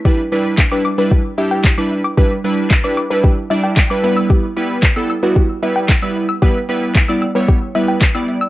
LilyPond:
<<
  \new Staff \with { instrumentName = "Synth arpeggio sound" } { \time 4/4 \key e \dorian \tempo 4 = 113 g'16 r4 d'''16 d'''16 b'16 g'16 r16 e''16 g''16 r16 d'''16 r16 d'''16 | g'16 r4 d'''16 d'''16 b'16 g'16 r16 e''16 g''16 r16 d'''16 r16 e'''16 | g'16 r4 e'''16 e'''16 b'16 g'16 r16 e''16 g''16 r16 e'''16 r16 e'''16 | g'16 r4 e'''16 e'''16 b'16 g'16 r16 e''16 g''16 r16 e'''16 r16 e'''16 | }
  \new Staff \with { instrumentName = "Synth keys" } { \time 4/4 \key e \dorian << { r1 | r2 r8 e''8 g''8 b''8 | r1 | r1 | } \\ { <g d' e' b'>16 r16 <g d' e' b'>8 r16 <g d' e' b'>16 r16 <g d' e' b'>8 r16 <g d' e' g'>8 r16 <g d' e' b'>8 r16 | <g d' e' b'>16 r16 <g d' e' b'>8 r16 <g d' e' b'>16 r16 <g d' e' b'>8 r16 <g d' e' d''>8 r16 <g d' e' b'>16 <g b e' b'>8~ | <g b e' b'>16 r16 <g b e' b'>8 r16 <g b e' a'>16 r16 <g b e' fis'>8 r16 <g b e' b'>8 r16 <g b e' b'>8 r16 | <g b e' b'>16 r16 <g b e' b'>8 r16 <g b e' d''>16 r16 <g b e' cis''>8 r16 <g b e' b'>8 r16 <g b e' d''>8 r16 | } >> }
  \new DrumStaff \with { instrumentName = "Drums" } \drummode { \time 4/4 bd4 <hc bd sn>4 bd4 <hc bd sn>4 | bd4 <hc bd sn>4 bd4 <hc bd sn>4 | bd4 <hc bd sn>4 bd4 <hc bd sn>4 | <hh bd>8 hh8 <hc hh bd sn>8 hh8 <hh bd>8 hh8 <hc hh bd sn>8 hh8 | }
>>